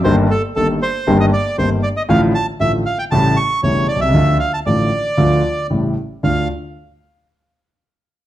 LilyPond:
<<
  \new Staff \with { instrumentName = "Bandoneon" } { \time 4/4 \key d \minor \tempo 4 = 116 c''8 a'8 a'8 c''8. ees''16 d''8 c''8 d''16 ees''16 | f''8 a''8 e''8 f''16 g''16 a''8 cis'''8 cis''8 d''16 e''16~ | e''8 f''16 a''16 d''2 r4 | f''8 r2. r8 | }
  \new Staff \with { instrumentName = "Grand piano" } { \clef bass \time 4/4 \key d \minor <g,, g, ees g bes g'>8 r8 <g,, g, ees g bes g'>8 r8 <g,, g, ees g bes g'>8 r8 <g,, g, ees g bes g'>8 r8 | <a,, a, d f a f'>8 r8 <a,, a, d f a f'>8 r8 <a,, a, cis g a e'>8 r8 <e,, e, cis g a e'>8 r32 b,,32 c,32 cis,32 | <d, d f a f'>8 r8 <a,, a, d f a f'>8 r8 <d, d f a f'>8 r8 <a,, a, cis g a e'>8 r8 | <d, a d' f'>8 r2. r8 | }
>>